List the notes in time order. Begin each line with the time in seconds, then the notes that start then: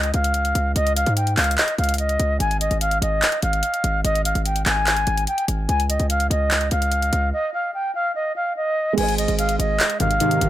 Already playing: C#2 D#5
0.03 closed hi-hat
0.14 C#2 F5, closed hi-hat
0.24 closed hi-hat
0.34 closed hi-hat
0.45 closed hi-hat
0.55 C#2, closed hi-hat
0.76 C#2 D#5, closed hi-hat
0.87 closed hi-hat
0.96 F5, closed hi-hat
1.06 G#2, closed hi-hat
1.17 G5, closed hi-hat
1.27 closed hi-hat
1.37 C#2 F5, clap, closed hi-hat, open hi-hat
1.44 closed hi-hat
1.51 closed hi-hat
1.58 D#5, clap, closed hi-hat
1.68 closed hi-hat
1.78 C#2 F5, closed hi-hat
1.84 closed hi-hat
1.89 closed hi-hat
1.94 closed hi-hat
1.98 D#5, closed hi-hat
2.09 closed hi-hat
2.20 C#2, closed hi-hat
2.40 G#1 G#5, closed hi-hat
2.51 closed hi-hat
2.61 D#5, closed hi-hat
2.71 G#1, closed hi-hat
2.81 F5, closed hi-hat
2.91 closed hi-hat
3.02 G#1 D#5, closed hi-hat
3.22 clap, closed hi-hat
3.32 closed hi-hat
3.42 G#1 F5, closed hi-hat
3.53 closed hi-hat
3.63 closed hi-hat
3.74 closed hi-hat
3.84 G#1, closed hi-hat
4.04 G#1 D#5, closed hi-hat
4.15 closed hi-hat
4.25 F5, closed hi-hat
4.35 G#1, closed hi-hat
4.46 G5, closed hi-hat
4.56 closed hi-hat
4.66 G#1 G#5, clap, closed hi-hat
4.87 clap, closed hi-hat
4.96 closed hi-hat
5.07 G#1, closed hi-hat
5.17 closed hi-hat
5.27 G5, closed hi-hat
5.38 closed hi-hat
5.48 G#1, closed hi-hat
5.69 C#2 G#5, closed hi-hat
5.80 closed hi-hat
5.90 D#5, closed hi-hat
6.00 C#2, closed hi-hat
6.10 F5, closed hi-hat
6.20 closed hi-hat
6.31 C#2 D#5, closed hi-hat
6.51 clap, closed hi-hat
6.61 closed hi-hat
6.71 C#2 F5, closed hi-hat
6.82 closed hi-hat
6.92 closed hi-hat
7.02 closed hi-hat
7.13 C#2, closed hi-hat
7.33 D#5
7.54 F5
7.74 G5
7.95 F5
8.15 D#5
8.36 F5
8.57 D#5
8.93 G#3 G#4
8.98 G#1 C5 G#5, closed hi-hat, crash
9.03 D#5
9.08 closed hi-hat
9.18 D#5, closed hi-hat
9.28 G#1, closed hi-hat
9.39 F5, closed hi-hat
9.49 closed hi-hat
9.59 G#1 D#5, closed hi-hat
9.80 clap, closed hi-hat
9.90 closed hi-hat
10.00 G#1 G#2 C3 D#3 F5, closed hi-hat
10.11 closed hi-hat
10.20 G#2 C3 D#3, closed hi-hat
10.31 closed hi-hat
10.41 G#1, closed hi-hat